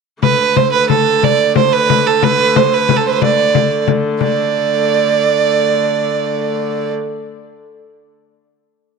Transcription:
0.23 D3 A3 B4, frame drum
0.40 frame drum
0.56 C5, frame drum
0.72 B4
0.89 A4, frame drum
1.23 D5, frame drum
1.40 frame drum
1.56 C5, frame drum
1.73 B4
1.90 frame drum
2.07 A4
2.23 B4, frame drum
2.40 frame drum
2.56 C5, frame drum
2.74 B4
2.89 frame drum
2.97 A4
3.06 B4 C5
3.14 C5
3.22 D5, frame drum
3.55 frame drum
3.71 frame drum
3.88 frame drum
4.05 frame drum
4.21 D3 A3 D5, frame drum

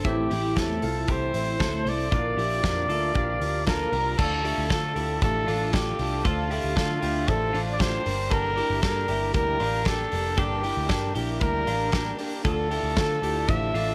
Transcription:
0.04 A1 A2 E3 A3 C4 E4 G4 A4, kick, closed hi-hat
0.30 A1 A3 C4 E4 G4, open hi-hat
0.56 E2 A2 E3 A3 C4 E4 G4 A4, kick, snare, closed hi-hat
0.82 C2 A3 C4 E4 F4 A4, open hi-hat
1.08 C2 E3 A3 C4 E4 G4 A4 C5, kick, closed hi-hat
1.33 A1 A3 C4 E4 C5, open hi-hat
1.60 D2 A2 E3 A3 C4 E4 A4, kick, snare, closed hi-hat
1.85 C2 A3 C4 E4 A4 C5 D5, open hi-hat
2.10 A#1 A#2 D3 F3 A#3 D4 F4 A#4, kick, closed hi-hat
2.37 A#1 F3 A#3 D4 E4 F4 G4, open hi-hat
2.63 F2 A#2 D3 F3 A#3 D4 F4 G4 A#4, kick, snare, closed hi-hat
2.88 D2 F3 A#3 D4 F4 A4 A#4 E5, open hi-hat
3.14 A#1 D3 F3 A#3 D4 F4 G4 A#4 F5, kick, closed hi-hat
3.18 F4
3.40 D2 A#3 D4 F4 A#4, open hi-hat
3.44 F3
3.66 A#2 D3 F3 A#3 D4 F4 A4 A#4 A5, kick, snare, closed hi-hat
3.92 C2 A#3 D4 F4 G4 A#4 A#5, open hi-hat
3.96 F3
4.18 D2 D3 F3 A3 D4 F4 A4, kick, crash
4.44 F3 A3 D4 E4 F4 G4 A4, open hi-hat
4.58 D2
4.70 D3 F3 A3 D4 F4 A4, kick, snare, ride
4.95 D2 F3 A3 D4 E4 F4 G4 A4, open hi-hat
5.22 A1 D3 F3 A3 D4 F4 A4, kick, hi-hat pedal, ride
5.47 A1 F3 A3 D4 F4 A4, open hi-hat
5.73 D3 F3 A3 D4 F4 G4 A4, kick, snare, hi-hat pedal, ride
5.99 C2 F3 A3 D4 F4 A4, open hi-hat
6.24 D2 D3 F3 A3 D4 F4 A4, kick, hi-hat pedal, ride
6.50 F3 A3 D4 E4 F4 G4 A4, open hi-hat
6.64 D2
6.76 D3 F3 A3 D4 F4 A4, kick, snare, ride
7.01 D2 F3 A3 D4 E4 F4 G4, open hi-hat
7.27 A1 D3 F3 A3 D4 F4 A4 C5, kick, hi-hat pedal, ride
7.53 A1 F3 A3 D4 F4 C5, open hi-hat
7.73 D5
7.78 D3 F3 A3 D4 F4 G4 C5, kick, snare, hi-hat pedal, ride
8.04 G1 G3 A#3 D4 G4 A#4, open hi-hat
8.30 G2 D3 G3 A#3 D4 A4 A#4, kick, hi-hat pedal, ride
8.56 G3 A#3 D4 E4 G4 A#4, open hi-hat
8.70 G1
8.82 G2 D3 G3 A#3 D4 G4 A4 A#4, kick, snare, hi-hat pedal, ride
9.08 G1 G3 A#3 D4 E4 G4 A#4, open hi-hat
9.33 D2 G2 D3 G3 A#3 D4 G4 A#4, kick, hi-hat pedal, ride
9.59 A1 G3 A#3 D4 F4 G4 A#4, open hi-hat
9.85 D3 G3 A#3 D4 G4 A4 A#4, kick, snare, hi-hat pedal, ride
10.11 F1 G3 A#3 D4 G4 A#4, open hi-hat
10.37 G1 G2 D3 G3 A#3 D4 G4 A4 A#4, kick, hi-hat pedal, ride
10.63 G3 A#3 D4 E4 G4 A#4, open hi-hat
10.77 D2
10.89 G2 D3 G3 A#3 D4 G4 A4 A#4, kick, snare, hi-hat pedal, ride
11.15 A#1 G3 A#3 D4 E4 G4 A#4, open hi-hat
11.41 D2 G2 D3 G3 A#3 D4 G4 A#4, kick, hi-hat pedal, ride
11.67 A1 G3 A#3 D4 F4 G4 A#4, open hi-hat
11.92 D3 G3 A#3 D4 G4 A#4, kick, snare, hi-hat pedal, ride
11.96 D4
12.19 G3 A#3 D4 G4 A#4, open hi-hat
12.45 D2 D3 F3 A3 D4 F4 A4, kick, hi-hat pedal, ride
12.71 F3 A3 D4 E4 F4 G4 A4, open hi-hat
12.83 D2
12.96 D3 F3 A3 D4 F4 A4, kick, snare, ride
13.22 D2 F3 A3 D4 E4 F4 G4, open hi-hat
13.48 A1 D3 F3 A3 D4 F4 A4 E5, kick, hi-hat pedal, ride
13.73 A1 F3 A3 D4 F4 A4, open hi-hat

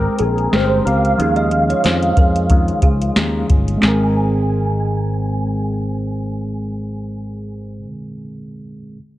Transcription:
Already playing: G#3 C4 G4 A#4 G5
0.19 A#1 C4 G#4 A#4, closed hi-hat
0.38 closed hi-hat
0.52 G1 G#3 C4 G4 A#4 C5, snare, closed hi-hat
0.85 C#2 G#3 C4 G4 A#4 C5 F5, closed hi-hat
1.05 closed hi-hat
1.17 D#2 D#3 F3 G#3 C#4 D#4 F4, closed hi-hat
1.22 G#4
1.36 D#5, closed hi-hat
1.51 G#3 C#4 F4, closed hi-hat
1.70 C#5, closed hi-hat
1.83 F2 D#3 G#3 C#4 F4 C5, snare, closed hi-hat
2.03 closed hi-hat
2.16 F2 G#3 C#4 F4 A#4, kick, closed hi-hat
2.36 closed hi-hat
2.50 D#3 G#3 C#4 F4, kick, closed hi-hat
2.68 closed hi-hat
2.82 C#2 G#3 C#4 F4 G#4, kick, closed hi-hat
3.02 closed hi-hat
3.16 D#2 D#3 G#3 C#4 F4, snare, closed hi-hat
3.49 G1 G#3 C#4 F4, kick, closed hi-hat
3.68 closed hi-hat
3.77 G#3 C4
3.82 G#1 C4 G#4 G#5, snare, clap
3.87 A#4

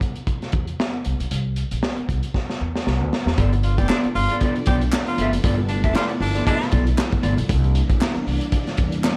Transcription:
0.01 C2, kick, closed hi-hat
0.15 closed hi-hat
0.27 kick, closed hi-hat
0.42 snare, closed hi-hat
0.52 E2, kick, closed hi-hat
0.67 closed hi-hat
0.80 snare
1.05 C2, closed hi-hat
1.20 B1, closed hi-hat
1.31 C2, closed hi-hat
1.56 closed hi-hat
1.71 A#1, closed hi-hat
1.83 snare
1.97 muted upright bass stroke, closed hi-hat
2.09 C2, kick, closed hi-hat
2.23 closed hi-hat
2.34 kick, snare
2.50 snare
2.61 E2
2.76 snare
2.87 C2, snare
3.01 D2
3.13 snare
3.26 E2, snare
3.37 G1 F3 A3 B3 D4 F4 A4 D5, kick, closed hi-hat
3.53 muted clean electric guitar stroke, closed hi-hat
3.63 F4, muted clean electric guitar stroke, closed hi-hat
3.78 F1 B3 F4 G4 A4 D5, kick, closed hi-hat
3.88 B3 D4 F4 A4 D5, snare, clap
4.04 muted upright bass stroke, closed hi-hat
4.15 G1 F4, muted clean electric guitar stroke, open hi-hat
4.30 B3 F4 A4 D5, closed hi-hat
4.41 B3 F4 A4 D5, kick, closed hi-hat
4.55 muted clean electric guitar stroke, closed hi-hat
4.66 B1 B3 F4 G4 A4 D5, kick, closed hi-hat
4.81 muted clean electric guitar stroke, closed hi-hat
4.92 snare, clap
5.07 F4, muted clean electric guitar stroke, closed hi-hat
5.18 G1 B3 F4 A4 E5, closed hi-hat
5.32 F#1, muted clean electric guitar stroke, closed hi-hat
5.44 G1 B3 E4 F4 A4 D5, kick, closed hi-hat
5.59 muted clean electric guitar stroke
5.68 D4, muted clean electric guitar stroke, closed hi-hat
5.84 F1 B3 D4 F4 A4 E5, kick, closed hi-hat
5.95 B3 F4 A4 D5, snare, clap
6.09 closed hi-hat
6.20 G1 D4, muted clean electric guitar stroke, open hi-hat
6.35 B3 F4 A4 D5, closed hi-hat
6.45 B3 D4 F4 A4 E5, kick, closed hi-hat
6.60 muted clean electric guitar stroke, snare, closed hi-hat
6.71 B1 B3 F4 A4 D5, kick, closed hi-hat
6.86 muted clean electric guitar stroke, closed hi-hat
6.97 muted clean electric guitar stroke, snare, clap
7.12 kick, closed hi-hat
7.23 G1 B3 F4 A4 D5, closed hi-hat
7.37 B1, muted clean electric guitar stroke, closed hi-hat
7.49 C2 E3 G3 A#3 D4, kick, closed hi-hat
7.64 closed hi-hat
7.75 closed hi-hat
7.90 A#1, kick, closed hi-hat
8.01 snare, clap
8.15 muted upright bass stroke, closed hi-hat
8.26 C2, open hi-hat
8.41 closed hi-hat
8.52 kick, closed hi-hat
8.67 snare, closed hi-hat
8.77 E2, kick, closed hi-hat
8.92 closed hi-hat
9.04 snare, clap

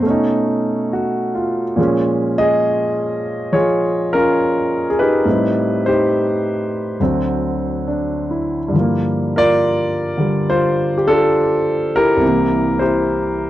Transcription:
0.00 B2 A3
0.06 C#4 D#4
0.93 F#4
1.35 F4
1.76 A#2 F3 G#3
1.81 C#4
2.38 G#4 D#5
3.52 F3 F4 G#4 C#5
4.13 C#4 F4 A#4
4.90 G#4
4.99 D#4 G4 B4
5.25 A2 G3 C4
5.30 D#4
5.86 D#4 G4 C5
7.00 D2 D3 F#3 C4
7.88 D4
8.31 E4
8.68 G2
8.73 D3 F3
8.80 A#3
9.36 F4 A#4 D5
10.17 D3 G3
10.50 F4 C5
10.98 G4
11.08 D4 F4 A4
11.96 E4 G4 A#4
12.16 C2
12.21 C3 E3
12.28 A#3
12.79 E4 G4 C5

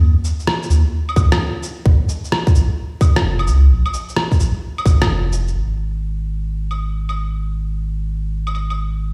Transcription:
0.01 D#2
0.24 shaker
0.40 shaker
0.47 cross-stick
0.63 shaker
0.70 D#2, shaker
1.09 claves
1.16 D#2, kick, claves, shaker
1.32 cross-stick, claves
1.63 shaker
1.85 A#1, kick
2.09 shaker
2.24 shaker
2.32 cross-stick
2.47 kick, shaker
2.55 A#1, shaker
3.01 kick, claves, shaker
3.16 cross-stick
3.24 F1
3.39 claves
3.47 C#2, shaker
3.70 A#1
3.86 claves
3.94 shaker
4.09 shaker
4.17 cross-stick
4.32 kick, shaker
4.39 A#1, shaker
4.78 claves
4.86 A#1, kick, claves, shaker
5.02 cross-stick, claves
5.09 F1
5.33 shaker
5.48 shaker
5.55 G#1
6.71 claves
7.09 claves
8.47 claves
8.55 claves
8.70 claves

